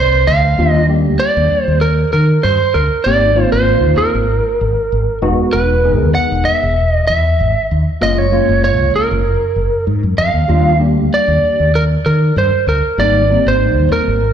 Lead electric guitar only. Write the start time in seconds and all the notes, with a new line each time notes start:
Already playing: C5
0.27 F5
0.71 D#5
1.19 D5
1.64 C5
1.81 A#4
2.13 A#4
2.43 C5
2.74 A#4
3.04 D5
3.52 C5
3.98 A#4
5.53 B4
5.94 A#4
6.15 F#5
6.45 E5
6.91 D#5
7.07 E5
8.03 D#5
8.18 C#5
8.64 C#5
8.96 A#4
10.18 F5
11.14 D5
11.75 A#4
12.06 A#4
12.38 C5
12.69 A#4
13.00 D5
13.48 C5
13.92 A#4